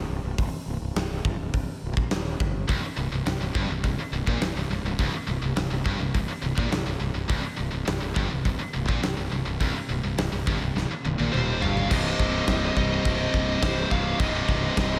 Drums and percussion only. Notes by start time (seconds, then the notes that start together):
0.38 kick, open hi-hat
0.96 snare, open hi-hat
1.25 kick
1.54 kick, open hi-hat
1.97 kick
2.11 snare, open hi-hat
2.40 kick
2.69 kick, open hi-hat
3.26 snare, open hi-hat
3.55 kick
3.84 kick, open hi-hat
4.27 kick
4.41 snare, open hi-hat
4.99 kick, open hi-hat
5.56 snare, open hi-hat
5.86 kick
6.15 kick, open hi-hat
6.58 kick
6.72 snare, open hi-hat
7.30 kick, open hi-hat
7.87 snare, open hi-hat
8.16 kick
8.45 kick, open hi-hat
8.89 kick
9.03 snare, open hi-hat
9.61 kick, open hi-hat
10.18 snare, open hi-hat
10.47 kick
10.77 snare
11.05 high tom
11.19 high tom
11.34 mid tom
11.62 floor tom
11.77 floor tom
11.91 kick, crash
12.20 kick
12.47 kick, snare, crash
12.77 kick
13.05 kick, crash
13.34 kick
13.62 kick, snare, crash
13.91 kick
14.20 kick, crash
14.49 kick
14.77 kick, snare, crash